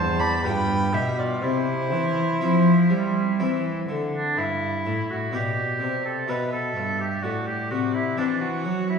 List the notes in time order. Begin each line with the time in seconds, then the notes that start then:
Already playing: E2 C4 E4 C5 A5
0.19 D5 B5
0.43 G2 B3 F4 B4 G5
0.93 B2 G4 E5
1.18 F4 D5
1.42 C3 E4 C5
1.92 E3
2.41 F3 C4 E4
2.90 G3
3.40 E3 C4 E4
3.89 D3
4.13 D4
4.37 G2 E4
4.86 A2
5.10 F#4
5.32 B2 B3 D4 G4 D5
5.80 C3
6.05 A4
6.28 B2 B3 D4 B4 E5
6.52 A4
6.75 G2
7.00 G4
7.23 A2 F#4 D5
7.47 G4
7.70 C3 F#4
7.94 E4
8.17 E3 C4 D4 F#5
8.40 F#4
8.65 F#3
8.89 E4